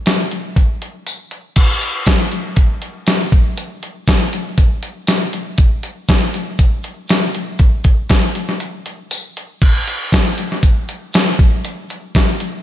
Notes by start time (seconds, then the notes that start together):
0.06 snare, closed hi-hat, tambourine
0.31 closed hi-hat
0.56 kick, closed hi-hat
0.82 closed hi-hat
1.07 closed hi-hat, tambourine
1.31 closed hi-hat
1.56 kick, closed hi-hat, crash, shaker
1.81 closed hi-hat, shaker
2.06 kick, snare, closed hi-hat, tambourine, shaker
2.31 closed hi-hat, shaker
2.56 kick, closed hi-hat, shaker
2.82 closed hi-hat, shaker
3.07 snare, closed hi-hat, tambourine, shaker
3.32 kick, closed hi-hat, shaker
3.57 closed hi-hat, shaker
3.82 closed hi-hat, shaker
4.07 kick, snare, closed hi-hat, tambourine, shaker
4.33 closed hi-hat, shaker
4.58 kick, closed hi-hat, shaker
4.83 closed hi-hat, shaker
5.07 snare, closed hi-hat, tambourine, shaker
5.33 closed hi-hat, shaker
5.58 kick, closed hi-hat, shaker
5.83 closed hi-hat, shaker
6.08 kick, snare, closed hi-hat, tambourine, shaker
6.34 closed hi-hat, shaker
6.58 kick, closed hi-hat, shaker
6.83 closed hi-hat, shaker
7.08 snare, closed hi-hat, tambourine, shaker
7.33 closed hi-hat, shaker
7.59 kick, closed hi-hat, shaker
7.84 kick, closed hi-hat, shaker
8.09 kick, snare, closed hi-hat, tambourine, shaker
8.35 closed hi-hat, shaker
8.49 snare
8.59 closed hi-hat, shaker
8.86 closed hi-hat, shaker
9.11 closed hi-hat, tambourine, shaker
9.36 closed hi-hat, shaker
9.62 kick, crash, shaker
9.86 closed hi-hat, shaker
10.12 kick, snare, closed hi-hat, tambourine, shaker
10.37 closed hi-hat, shaker
10.52 snare
10.62 kick, closed hi-hat, shaker
10.88 closed hi-hat, shaker
11.13 snare, closed hi-hat, tambourine, shaker
11.38 kick, closed hi-hat, shaker
11.64 closed hi-hat, shaker
11.89 closed hi-hat, shaker
12.15 kick, snare, closed hi-hat, tambourine, shaker
12.40 closed hi-hat, shaker